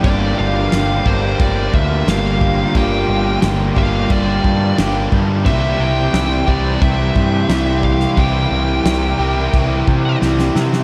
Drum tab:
CC |x---x---x---x---|x---x---x---x---|x---x---x---x---|x---x---x-------|
SD |----o-------o---|----o-------o---|----o-------o--o|----o-------oooo|
BD |o-----o-o-o---o-|o-----o-o-o---o-|o-----o-o-o---o-|o-------o-o-----|